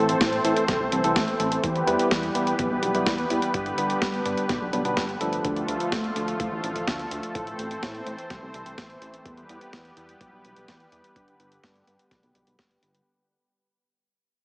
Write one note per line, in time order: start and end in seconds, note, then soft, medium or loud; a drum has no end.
0.00 0.16 A1 medium
0.00 0.42 E3 medium
0.00 3.50 E3 medium
0.00 0.42 A3 medium
0.00 1.60 A3 medium
0.00 0.42 C4 medium
0.00 1.62 C4 medium
0.00 0.42 A4 loud
0.00 1.60 A4 medium
0.00 1.62 C5 medium
0.09 closed hi-hat medium
0.21 0.39 A2 medium
0.21 kick loud
0.21 snare loud
0.21 closed hi-hat medium
0.33 closed hi-hat soft
0.45 0.54 A2 medium
0.45 0.63 E3 medium
0.45 0.63 A3 medium
0.45 0.63 C4 medium
0.45 0.63 A4 loud
0.45 closed hi-hat medium
0.56 closed hi-hat medium
0.68 0.78 C2 loud
0.68 kick loud
0.68 snare medium
0.68 closed hi-hat medium
0.80 0.90 C2 medium
0.92 1.01 C2 loud
0.92 1.02 E3 medium
0.92 1.02 A3 medium
0.92 1.02 C4 medium
0.92 1.02 A4 medium
0.92 closed hi-hat medium
1.04 1.13 C2 medium
1.04 1.23 E3 medium
1.04 1.23 A3 medium
1.04 1.23 C4 medium
1.04 1.23 A4 medium
1.04 closed hi-hat medium
1.16 1.35 A1 loud
1.16 kick loud
1.16 snare loud
1.16 closed hi-hat medium
1.28 closed hi-hat soft
1.40 1.58 A1 medium
1.40 1.59 E3 medium
1.40 1.59 A3 medium
1.40 1.59 C4 medium
1.40 1.59 A4 medium
1.40 closed hi-hat medium
1.52 closed hi-hat medium
1.64 1.82 E2 loud
1.64 5.41 G3 medium
1.64 5.41 B3 medium
1.64 5.41 G4 medium
1.64 5.41 B4 medium
1.64 kick loud
1.64 closed hi-hat medium
1.76 closed hi-hat soft
1.87 1.97 E2 loud
1.87 2.32 G3 medium
1.87 2.32 B3 medium
1.87 2.32 E4 medium
1.87 2.32 B4 loud
1.87 closed hi-hat medium
1.99 closed hi-hat medium
2.11 2.30 E2 medium
2.11 kick loud
2.11 snare loud
2.11 closed hi-hat medium
2.23 closed hi-hat soft
2.35 2.54 E2 loud
2.35 2.54 G3 medium
2.35 2.54 B3 medium
2.35 2.54 E4 medium
2.35 2.54 B4 medium
2.35 closed hi-hat medium
2.47 closed hi-hat medium
2.59 2.68 B1 medium
2.59 kick loud
2.59 closed hi-hat medium
2.71 2.80 B1 medium
2.83 2.92 B1 loud
2.83 2.93 G3 medium
2.83 2.93 B3 medium
2.83 2.93 E4 medium
2.83 2.93 B4 medium
2.83 closed hi-hat medium
2.95 3.04 B1 medium
2.95 3.13 G3 medium
2.95 3.13 B3 medium
2.95 3.13 E4 medium
2.95 3.13 B4 medium
2.95 closed hi-hat medium
3.06 3.25 E2 loud
3.06 kick loud
3.06 snare loud
3.06 closed hi-hat medium
3.18 closed hi-hat soft
3.30 3.40 E2 loud
3.30 3.49 G3 medium
3.30 3.49 B3 medium
3.30 3.49 E4 medium
3.30 3.49 B4 medium
3.30 closed hi-hat medium
3.42 closed hi-hat medium
3.54 3.73 G2 medium
3.54 7.31 D3 medium
3.54 kick loud
3.54 closed hi-hat medium
3.66 closed hi-hat soft
3.78 3.97 G1 loud
3.78 4.23 G3 medium
3.78 4.23 B3 medium
3.78 4.23 D4 medium
3.78 4.23 B4 loud
3.78 closed hi-hat medium
3.90 closed hi-hat soft
4.02 4.20 G2 medium
4.02 kick loud
4.02 snare loud
4.02 closed hi-hat medium
4.14 closed hi-hat soft
4.26 4.35 G2 medium
4.26 4.44 G3 medium
4.26 4.44 B3 medium
4.26 4.44 D4 medium
4.26 4.44 B4 medium
4.26 closed hi-hat medium
4.37 closed hi-hat medium
4.49 4.59 B1 loud
4.49 kick loud
4.49 snare medium
4.49 closed hi-hat medium
4.61 4.71 B1 medium
4.73 4.82 B1 loud
4.73 4.82 G3 medium
4.73 4.82 B3 medium
4.73 4.82 D4 medium
4.73 4.82 B4 loud
4.73 closed hi-hat medium
4.85 4.94 B1 medium
4.85 5.04 G3 medium
4.85 5.04 B3 medium
4.85 5.04 D4 medium
4.85 5.04 B4 loud
4.85 closed hi-hat medium
4.97 5.16 G1 medium
4.97 kick loud
4.97 snare loud
4.97 closed hi-hat medium
5.09 closed hi-hat soft
5.21 5.39 G1 medium
5.21 5.66 F3 loud
5.21 5.66 A3 medium
5.21 5.66 D4 medium
5.21 5.66 A4 loud
5.21 closed hi-hat medium
5.33 closed hi-hat soft
5.44 5.63 D2 medium
5.44 7.33 F3 medium
5.44 9.22 A3 medium
5.44 7.33 F4 medium
5.44 9.22 A4 medium
5.44 kick loud
5.44 closed hi-hat medium
5.56 closed hi-hat soft
5.68 5.78 D2 medium
5.68 closed hi-hat medium
5.80 closed hi-hat soft
5.92 6.11 D2 medium
5.92 kick loud
5.92 snare loud
5.92 closed hi-hat medium
6.04 closed hi-hat soft
6.16 6.35 D2 loud
6.16 closed hi-hat medium
6.28 closed hi-hat soft
6.40 6.49 A1 medium
6.40 kick loud
6.40 closed hi-hat medium
6.52 6.61 A1 medium
6.64 6.73 A1 loud
6.64 closed hi-hat medium
6.76 6.85 A1 medium
6.76 closed hi-hat soft
6.87 7.06 D2 medium
6.87 kick medium
6.87 snare loud
6.87 closed hi-hat medium
6.99 closed hi-hat soft
7.11 7.21 D2 loud
7.11 closed hi-hat medium
7.23 closed hi-hat soft
7.35 7.54 A2 medium
7.35 11.12 E3 medium
7.35 9.24 C4 medium
7.35 9.24 C5 medium
7.35 kick loud
7.35 closed hi-hat medium
7.47 closed hi-hat soft
7.59 7.77 A1 medium
7.59 closed hi-hat medium
7.71 closed hi-hat soft
7.83 8.01 A2 medium
7.83 kick loud
7.83 snare loud
7.83 closed hi-hat medium
7.95 closed hi-hat soft
8.07 8.16 A2 medium
8.07 closed hi-hat medium
8.18 closed hi-hat soft
8.30 8.40 C2 medium
8.30 kick loud
8.30 snare medium
8.30 closed hi-hat medium
8.42 8.52 C2 medium
8.54 8.63 C2 loud
8.54 closed hi-hat medium
8.66 8.75 C2 medium
8.66 closed hi-hat soft
8.78 8.97 A1 loud
8.78 kick medium
8.78 snare loud
8.78 closed hi-hat medium
8.90 closed hi-hat soft
9.02 9.20 A1 medium
9.02 closed hi-hat medium
9.14 closed hi-hat soft
9.26 9.44 E2 medium
9.26 13.03 G3 medium
9.26 13.03 B3 medium
9.26 13.03 G4 medium
9.26 13.03 B4 medium
9.26 kick loud
9.26 closed hi-hat medium
9.37 closed hi-hat soft
9.49 9.59 E2 loud
9.49 closed hi-hat medium
9.61 closed hi-hat soft
9.73 9.92 E2 medium
9.73 kick medium
9.73 snare loud
9.73 closed hi-hat medium
9.85 closed hi-hat soft
9.97 10.16 E2 loud
9.97 closed hi-hat medium
10.09 closed hi-hat medium
10.21 10.30 B1 medium
10.21 kick loud
10.21 closed hi-hat medium
10.33 10.42 B1 medium
10.45 10.54 B1 loud
10.45 closed hi-hat medium
10.56 10.66 B1 medium
10.56 closed hi-hat soft
10.68 10.87 E2 medium
10.68 kick medium
10.68 snare loud
10.68 closed hi-hat medium
10.80 closed hi-hat soft
10.92 11.01 E2 loud
10.92 closed hi-hat medium
11.04 closed hi-hat soft
11.16 11.35 G2 medium
11.16 13.05 D3 medium
11.16 kick loud
11.16 closed hi-hat medium
11.28 closed hi-hat soft
11.40 11.58 G1 loud
11.40 closed hi-hat medium
11.52 closed hi-hat medium
11.64 11.82 G2 medium
11.64 kick medium
11.64 snare loud
11.64 closed hi-hat medium
11.75 closed hi-hat soft
11.87 11.97 G2 medium
11.87 closed hi-hat medium
11.99 closed hi-hat medium
12.11 12.21 B1 medium
12.11 kick loud
12.11 snare medium
12.11 closed hi-hat medium
12.23 12.32 B1 medium
12.23 closed hi-hat soft
12.35 12.44 B1 loud
12.35 closed hi-hat medium
12.47 12.56 B1 medium
12.47 closed hi-hat soft
12.59 12.77 G1 medium
12.59 kick loud
12.59 snare loud
12.59 closed hi-hat medium
12.71 closed hi-hat soft
12.83 13.01 G1 loud
12.83 closed hi-hat medium
12.95 closed hi-hat soft